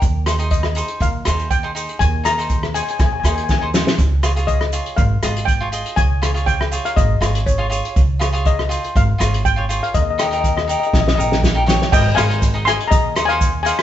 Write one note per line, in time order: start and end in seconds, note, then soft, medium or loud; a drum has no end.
0.02 0.80 D#2 medium
0.02 kick medium
0.02 closed hi-hat medium
0.02 shaker medium
0.26 0.34 D#4 medium
0.26 0.34 G#4 medium
0.26 0.35 C5 medium
0.26 cross-stick medium
0.26 closed hi-hat medium
0.26 shaker medium
0.39 0.61 D#4 medium
0.39 0.62 G#4 medium
0.39 0.62 C5 medium
0.39 closed hi-hat medium
0.50 1.02 D#5 medium
0.50 kick medium
0.50 closed hi-hat medium
0.50 shaker medium
0.63 cross-stick medium
0.75 1.06 D#4 medium
0.75 1.06 G#4 medium
0.75 1.07 C5 medium
0.75 closed hi-hat medium
0.75 shaker medium
0.88 closed hi-hat medium
1.00 1.21 D#2 medium
1.00 1.52 F5 medium
1.00 kick loud
1.00 closed hi-hat medium
1.00 shaker medium
1.25 1.85 D#2 medium
1.25 1.48 D#4 medium
1.25 1.48 G#4 medium
1.25 1.49 C5 medium
1.25 cross-stick medium
1.25 closed hi-hat medium
1.25 shaker medium
1.39 closed hi-hat medium
1.39 shaker soft
1.50 2.02 G5 medium
1.50 kick medium
1.50 closed hi-hat medium
1.50 shaker medium
1.63 1.70 D#4 medium
1.63 1.71 G#4 medium
1.63 1.71 C5 medium
1.75 2.05 D#4 medium
1.75 2.05 G#4 medium
1.75 2.06 C5 medium
1.75 closed hi-hat medium
1.75 shaker medium
1.89 closed hi-hat medium
1.99 2.79 D#2 medium
1.99 2.11 G#5 loud
1.99 kick medium
1.99 closed hi-hat medium
1.99 shaker medium
2.24 2.32 D#4 medium
2.24 2.33 G#4 medium
2.24 2.33 C5 medium
2.24 2.71 A#5 medium
2.24 cross-stick medium
2.24 closed hi-hat medium
2.24 shaker medium
2.38 2.60 D#4 medium
2.38 2.60 G#4 soft
2.38 2.61 C5 medium
2.38 closed hi-hat medium
2.38 shaker soft
2.49 kick medium
2.49 closed hi-hat medium
2.49 shaker medium
2.63 cross-stick medium
2.74 3.04 D#4 medium
2.74 3.05 G#4 medium
2.74 3.05 C5 medium
2.74 2.82 G#5 medium
2.74 closed hi-hat medium
2.74 shaker medium
2.83 2.89 G#5 medium
2.88 2.97 G#5 medium
2.88 closed hi-hat medium
2.88 shaker soft
2.99 3.19 D#2 medium
2.99 3.04 G#5 soft
2.99 kick medium
2.99 cross-stick medium
2.99 closed hi-hat soft
2.99 shaker medium
3.06 3.12 G#5 medium
3.13 3.19 G#5 medium
3.20 3.82 D#2 medium
3.20 3.26 G#5 soft
3.24 3.47 D#4 medium
3.24 3.47 G#4 medium
3.24 3.47 C5 medium
3.24 3.34 G#5 soft
3.24 cross-stick medium
3.24 closed hi-hat medium
3.24 shaker medium
3.35 3.42 G#5 soft
3.35 closed hi-hat medium
3.35 shaker soft
3.44 3.49 G#5 medium
3.49 3.58 G#5 medium
3.49 kick medium
3.49 snare medium
3.49 shaker medium
3.59 3.69 D#4 medium
3.59 3.69 G#4 medium
3.59 3.69 C5 medium
3.59 3.66 G#5 medium
3.74 3.99 D#4 medium
3.74 3.99 G#4 medium
3.74 3.99 C5 medium
3.74 snare medium
3.74 shaker medium
3.87 snare medium
3.99 4.77 C#2 medium
3.99 kick medium
3.99 closed hi-hat medium
3.99 shaker medium
4.23 4.31 F4 medium
4.23 4.31 G#4 medium
4.23 4.32 C#5 medium
4.23 cross-stick medium
4.23 closed hi-hat medium
4.23 shaker medium
4.36 4.59 F4 medium
4.36 4.59 G#4 medium
4.36 4.59 C#5 medium
4.36 closed hi-hat medium
4.36 shaker soft
4.47 4.99 D#5 medium
4.47 kick medium
4.47 closed hi-hat soft
4.47 shaker medium
4.61 cross-stick medium
4.73 5.03 F4 medium
4.73 5.03 G#4 medium
4.73 5.04 C#5 medium
4.73 closed hi-hat medium
4.73 shaker medium
4.86 closed hi-hat medium
4.96 5.18 G#1 medium
4.96 5.43 F5 medium
4.96 kick loud
4.96 closed hi-hat medium
4.96 shaker medium
5.23 5.82 G#1 medium
5.23 5.45 F4 medium
5.23 5.46 G#4 medium
5.23 5.46 D#5 medium
5.23 cross-stick medium
5.23 closed hi-hat medium
5.23 shaker medium
5.37 closed hi-hat medium
5.37 shaker soft
5.45 5.98 G5 medium
5.45 kick medium
5.45 closed hi-hat medium
5.45 shaker medium
5.60 5.68 F4 medium
5.60 5.68 G#4 medium
5.60 5.68 C#5 medium
5.72 6.02 F4 medium
5.72 6.03 G#4 medium
5.72 6.03 D#5 medium
5.72 closed hi-hat medium
5.72 shaker medium
5.86 closed hi-hat medium
5.96 6.76 C#2 medium
5.96 6.48 G#5 loud
5.96 kick medium
5.96 closed hi-hat medium
5.96 shaker medium
6.22 6.30 F4 medium
6.22 6.30 G#4 medium
6.22 6.30 C#5 medium
6.22 cross-stick medium
6.22 closed hi-hat medium
6.22 shaker medium
6.34 6.57 F4 medium
6.34 6.57 G#4 medium
6.34 6.58 C#5 medium
6.34 closed hi-hat medium
6.34 shaker soft
6.46 6.86 G5 medium
6.46 kick medium
6.46 closed hi-hat medium
6.46 shaker medium
6.61 cross-stick medium
6.71 7.02 F4 medium
6.71 7.02 G#4 medium
6.71 7.02 C#5 medium
6.71 closed hi-hat medium
6.71 shaker medium
6.85 6.97 F5 medium
6.85 closed hi-hat medium
6.96 7.16 G#1 medium
6.96 7.48 D#5 medium
6.96 kick loud
6.96 closed hi-hat medium
6.96 shaker medium
7.21 7.80 G#1 medium
7.21 7.43 F4 medium
7.21 7.44 G#4 medium
7.21 7.44 C#5 medium
7.21 cross-stick medium
7.21 closed hi-hat medium
7.21 shaker medium
7.35 closed hi-hat medium
7.46 7.82 C#5 medium
7.46 kick medium
7.46 closed hi-hat medium
7.46 shaker medium
7.58 7.66 F4 medium
7.58 7.66 G#4 medium
7.58 7.66 C#5 medium
7.70 8.00 F4 medium
7.70 8.01 G#4 medium
7.70 8.01 C#5 medium
7.70 closed hi-hat medium
7.70 shaker medium
7.85 closed hi-hat medium
7.96 8.75 C#2 medium
7.96 kick medium
7.96 closed hi-hat soft
7.96 shaker medium
8.19 8.28 F4 medium
8.19 8.28 G#4 medium
8.19 8.29 C#5 medium
8.19 cross-stick medium
8.19 closed hi-hat medium
8.19 shaker medium
8.33 8.55 F4 medium
8.33 8.56 G#4 medium
8.33 8.56 C#5 medium
8.33 closed hi-hat medium
8.33 shaker soft
8.45 8.97 D#5 medium
8.45 kick medium
8.45 closed hi-hat medium
8.45 shaker medium
8.59 cross-stick medium
8.69 9.00 F4 medium
8.69 9.00 G#4 medium
8.69 9.00 C5 medium
8.69 closed hi-hat medium
8.69 shaker medium
8.84 closed hi-hat medium
8.95 9.15 G#1 medium
8.95 9.42 F5 medium
8.95 kick medium
8.95 closed hi-hat medium
8.95 shaker medium
9.18 9.79 G#1 medium
9.18 9.42 F4 medium
9.18 9.42 G#4 medium
9.18 9.42 C#5 medium
9.18 cross-stick medium
9.18 closed hi-hat medium
9.18 shaker medium
9.34 closed hi-hat medium
9.45 9.84 G5 loud
9.45 kick medium
9.45 closed hi-hat medium
9.45 shaker medium
9.56 9.64 F4 medium
9.56 9.64 G#4 medium
9.56 9.65 C#5 medium
9.69 9.94 F4 medium
9.69 9.94 G#4 medium
9.69 9.95 C#5 medium
9.69 closed hi-hat medium
9.69 shaker medium
9.83 9.94 F5 medium
9.83 closed hi-hat medium
9.94 10.73 D#2 medium
9.94 10.01 D#5 medium
9.94 kick loud
9.94 closed hi-hat medium
9.94 shaker medium
10.02 10.09 D#5 medium
10.10 10.17 D#5 medium
10.18 10.26 D#4 medium
10.18 10.27 G4 medium
10.18 10.27 A#4 medium
10.18 10.24 D#5 soft
10.18 cross-stick medium
10.18 closed hi-hat medium
10.18 shaker medium
10.26 10.33 D#5 medium
10.31 10.54 D#4 medium
10.31 10.54 G4 medium
10.31 10.54 A#4 medium
10.31 10.39 D#5 soft
10.31 closed hi-hat medium
10.31 shaker soft
10.41 10.47 D#5 medium
10.41 kick medium
10.41 closed hi-hat medium
10.45 10.56 D#5 soft
10.45 shaker medium
10.57 10.63 D#5 medium
10.57 cross-stick medium
10.65 10.98 D#4 medium
10.65 10.98 G4 medium
10.65 10.70 D#5 soft
10.69 10.99 A#4 medium
10.69 10.78 D#5 medium
10.69 closed hi-hat medium
10.69 shaker medium
10.80 10.85 D#5 soft
10.80 closed hi-hat medium
10.80 shaker soft
10.87 10.93 D#5 soft
10.94 11.13 A#1 medium
10.94 11.00 D#5 soft
10.94 kick loud
10.94 snare medium
10.94 shaker medium
11.01 11.07 D#5 medium
11.08 11.14 D#5 medium
11.08 snare medium
11.15 11.77 A#1 medium
11.15 11.40 D#4 medium
11.15 11.40 G4 medium
11.15 11.41 A#4 medium
11.15 11.23 D#5 medium
11.20 11.31 D#5 medium
11.20 shaker medium
11.32 snare medium
11.32 shaker soft
11.43 kick medium
11.43 snare medium
11.43 shaker medium
11.55 11.62 D#4 medium
11.55 11.63 G4 medium
11.55 11.63 A#4 medium
11.66 11.92 D#4 medium
11.66 11.92 G4 medium
11.66 11.92 C#5 medium
11.66 snare medium
11.66 shaker medium
11.82 snare medium
11.82 shaker soft
11.92 12.12 G#1 loud
11.92 12.16 D#5 medium
11.92 12.18 G5 loud
11.92 kick loud
11.92 crash loud
11.92 shaker medium
12.15 12.76 G#1 medium
12.15 12.24 D#4 medium
12.15 12.25 G#4 medium
12.15 12.25 C5 medium
12.15 12.63 F5 medium
12.15 12.66 G#5 loud
12.15 cross-stick medium
12.15 closed hi-hat medium
12.15 shaker medium
12.29 12.44 D#4 medium
12.29 12.44 G#4 medium
12.29 12.44 C5 medium
12.29 closed hi-hat medium
12.42 kick medium
12.42 closed hi-hat medium
12.42 shaker medium
12.54 12.91 D#4 medium
12.54 12.91 G#4 medium
12.54 12.92 D#5 medium
12.65 12.90 G#5 medium
12.65 12.91 C6 loud
12.65 cross-stick medium
12.65 closed hi-hat medium
12.65 shaker medium
12.81 closed hi-hat medium
12.88 13.26 D#5 medium
12.88 13.29 A#5 medium
12.88 kick loud
12.92 13.70 D#2 medium
12.92 closed hi-hat medium
12.92 shaker medium
13.16 13.24 D#4 medium
13.16 13.24 G#4 medium
13.16 13.24 C5 medium
13.16 cross-stick medium
13.16 closed hi-hat medium
13.16 shaker medium
13.25 13.51 D#4 medium
13.25 13.63 F5 medium
13.25 13.62 G#5 loud
13.30 13.52 G#4 medium
13.30 13.52 C5 medium
13.30 closed hi-hat medium
13.41 kick medium
13.41 closed hi-hat medium
13.41 shaker medium
13.63 13.82 D#4 medium
13.63 13.82 G#4 medium
13.63 13.82 C5 medium
13.63 13.82 F5 medium
13.63 13.82 G#5 medium
13.63 closed hi-hat medium
13.63 shaker medium
13.79 cross-stick medium
13.79 closed hi-hat medium